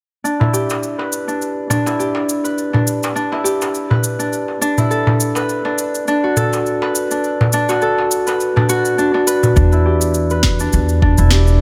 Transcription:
0.24 harp D4, cabasa
0.40 harp E4, darbuka tek, darbuka dum
0.53 harp G4, cabasa
0.70 darbuka ka, darbuka tek, cabasa
0.83 cabasa
0.98 harp B4, darbuka ka
1.12 cabasa
1.28 harp D4, cabasa
1.42 cabasa
1.70 harp D4, darbuka dum, cabasa
1.86 harp E4, darbuka tek, cabasa
1.99 harp G4, cabasa
2.15 darbuka tek
2.29 cabasa
2.44 harp B4, cabasa
2.58 cabasa
2.73 harp D4, darbuka tek, darbuka dum
2.87 cabasa
3.03 darbuka ka, darbuka tek, cabasa
3.15 harp D4, cabasa
3.32 harp E4, darbuka ka
3.44 harp G4, cabasa
3.61 darbuka tek, cabasa
3.74 cabasa
3.90 harp B4, darbuka dum
4.04 cabasa
4.19 harp D4, cabasa
4.33 cabasa
4.48 darbuka ka
4.61 harp D4, cabasa
4.78 harp E4, darbuka dum, cabasa
4.91 harp A4, cabasa
5.07 darbuka tek, darbuka dum
5.20 cabasa
5.35 harp B4, darbuka ka, darbuka tek, cabasa
5.49 cabasa
5.65 harp D4, darbuka ka
5.78 cabasa
5.95 cabasa
6.08 harp D4, cabasa
6.24 harp F#4
6.37 harp A4, darbuka dum, cabasa
6.53 darbuka tek, cabasa
6.66 cabasa
6.82 harp B4, darbuka tek
6.95 cabasa
7.11 harp D4, cabasa
7.24 cabasa
7.41 darbuka tek, darbuka dum
7.53 harp D4, cabasa
7.69 harp F#4, darbuka ka, darbuka tek, cabasa
7.82 harp A4, cabasa
7.98 darbuka ka
8.11 cabasa
8.27 harp B4, darbuka tek, cabasa
8.40 cabasa
8.56 harp D4, darbuka dum
8.69 harp F#4, cabasa
8.85 cabasa
8.98 harp D4, cabasa
9.14 harp D4, darbuka ka
9.27 harp B4, cabasa
9.43 darbuka dum, cabasa
9.56 upright bass E2, harp D4, kick, cabasa
9.72 harp E4, cabasa
9.86 harp G4
10.01 cabasa
10.14 cabasa
10.30 harp B4, cabasa
10.43 kick, snare
10.59 harp D4, cabasa
10.73 upright bass E2, cabasa
10.89 cabasa
11.02 harp D4, kick
11.18 upright bass E1, harp E4, cabasa
11.31 harp G4, snare, cabasa
11.47 cabasa

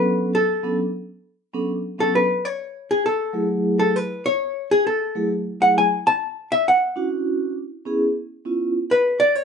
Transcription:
Already playing: vibraphone F#3 B3 C#4 D4 A4, hollow-body jazz guitar B4
0.35 hollow-body jazz guitar A4
0.63 vibraphone F#3 B3 C#4 D4 A4
1.53 vibraphone F#3 B3 C#4 D4 A4
1.98 vibraphone F#3 B3 C#4 D4 A4, hollow-body jazz guitar A4
2.15 hollow-body jazz guitar B4
2.45 hollow-body jazz guitar C#5
2.91 hollow-body jazz guitar G#4
3.06 hollow-body jazz guitar A4
3.33 vibraphone F#3 A3 E4 G#4
3.79 hollow-body jazz guitar A4
3.96 hollow-body jazz guitar B4
4.26 hollow-body jazz guitar C#5
4.71 hollow-body jazz guitar G#4
4.87 hollow-body jazz guitar A4
5.15 vibraphone F#3 A3 E4 G#4
5.60 vibraphone F#3 A3 E4 G#4, hollow-body jazz guitar F#5
5.78 hollow-body jazz guitar G#5
6.07 hollow-body jazz guitar A5
6.52 hollow-body jazz guitar E5
6.68 hollow-body jazz guitar F#5
6.96 vibraphone C#4 D4 E4 F#4
7.85 vibraphone B3 C#4 E4 G#4
8.45 vibraphone B3 C#4 E4 F4
8.91 hollow-body jazz guitar B4
9.20 hollow-body jazz guitar D5
9.35 hollow-body jazz guitar C#5

